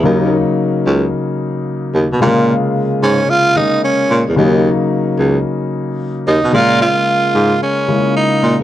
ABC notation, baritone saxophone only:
X:1
M:4/4
L:1/16
Q:"Swing 16ths" 1/4=111
K:Bbm
V:1 name="Baritone saxophone" clef=bass
E,,3 z3 D,,2 z6 E,, _C, | B,,3 z3 A,,2 z6 B,, =E,, | E,,3 z3 D,,2 z6 E,, _C, | B,,3 z3 A,,2 z6 B,, z |]